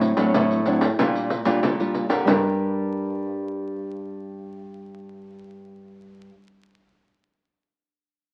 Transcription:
Already playing: A2 F#3 C4 D4
0.01 pandeiro
0.17 A2 F#3 C4 D4, pandeiro
0.34 A2, pandeiro
0.51 pandeiro
0.66 F#3 C4 D4, pandeiro
0.81 pandeiro
0.99 A#2 G3 D4 F4, pandeiro
1.15 pandeiro
1.30 pandeiro
1.45 A#2 G3 D4 F4, pandeiro
1.63 A#2, pandeiro
1.79 G3 D4 F4, pandeiro
1.94 pandeiro
2.09 D3 D4 G4 A#4, pandeiro
2.25 G2 G3 D4, pandeiro
2.29 G4 A#4

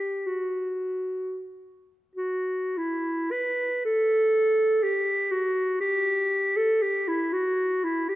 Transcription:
Already playing: G4
0.27 F#4
2.15 F#4
2.78 E4
3.31 B4
3.85 A4
4.83 G4
5.31 F#4
5.81 G4
6.57 A4
6.82 G4
7.08 E4
7.33 F#4
7.84 E4
8.09 G4

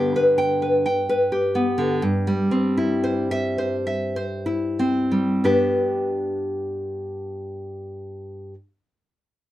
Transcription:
Already playing: G2 D3 B3 G4
0.16 B4
0.38 G5
0.62 B4
0.86 G5
1.09 B4
1.32 G4
1.55 B3
1.78 D3
2.02 G2
2.27 G3
2.51 C4
2.77 E4
3.04 C5
3.31 E5
3.58 C5
3.87 E5
4.16 C5
4.46 E4
4.79 C4
5.12 G3
5.44 G2 B3 D4 G4 B4

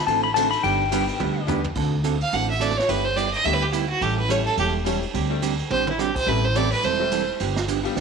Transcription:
0.07 A1 D3 A3 C4 F#4 A4 A5, ride
0.23 B5
0.34 D3 A3 C4 D4 F#4 A4 A5, hi-hat pedal, ride
0.51 B5, ride
0.63 G1 D3 G3 B3 D4 G4 G5, ride
0.91 D3 G3 B3 D4 G4 B4, hi-hat pedal, ride
1.08 ride
1.20 D2 D3 G3 B3 D4 G4, high tom
1.47 D3 G3 B3 D4 G4 B4, floor tom, hi-hat pedal
1.64 floor tom
1.75 D2 D3 A3 C4 F#4 A4, kick, crash
2.04 D3 A3 C4 F#4 A4, hi-hat pedal, ride
2.21 F5, ride
2.32 A1 D3 A3 C4 F#4 A4 F#5, ride
2.50 E5
2.59 D3 A3 C4 F#4 A4 D5, hi-hat pedal, ride
2.70 snare
2.77 C#5, snare
2.88 G1 G3 A3 B3 D4 E4 G4 B4, ride
3.05 C5
3.16 G3 B3 E4 G4 D5, hi-hat pedal, ride
3.33 D#5, ride
3.44 D2 G3 A3 B3 D4 E4 G4 E5, ride
3.53 B4
3.63 G4
3.73 G3 B3 E4 G4, hi-hat pedal, ride
3.89 F#4
4.01 A1 E3 G3 C#4 E4 G4 A4, ride
4.18 B4
4.28 E3 G3 A3 C#4 E4 G4 A4 C#5, hi-hat pedal, ride
4.45 A4, ride
4.57 E1 E3 G3 C#4 E4 G4 A4, ride
4.85 E3 G3 A3 C#4 E4 G4 A4, hi-hat pedal, ride
5.02 ride
5.14 D2 D3 G3 C4 D4 G4, ride
5.30 G3 A3 C4 D4 G4
5.41 D3 G3 C4 D4 G4, hi-hat pedal, ride
5.59 ride
5.70 A1 D3 G3 C4 D4 G4 C5, high tom
5.87 E4, high tom
5.98 D3 G3 C4 D4 G4, snare, hi-hat pedal
6.16 C5, kick, crash
6.26 A1 E3 G3 A3 C4 E4 G4 A4 B4
6.45 C5
6.55 E3 G3 A3 C4 E4 G4 A4 D5, hi-hat pedal, ride
6.72 B4, ride
6.83 E1 E3 G3 C4 E4 A4 C5, ride
6.99 G3 A3 C4 E4 G4
7.11 E3 G3 C4 E4 A4, hi-hat pedal, ride
7.40 G1 D3 F3 B3 D4 G4, ride
7.56 snare
7.68 D3 F3 B3 D4 G4, hi-hat pedal, ride
7.83 G3 B3 D4 F4 G4, ride
7.95 D2 D3 F3 B3 D4 G4, snare, ride

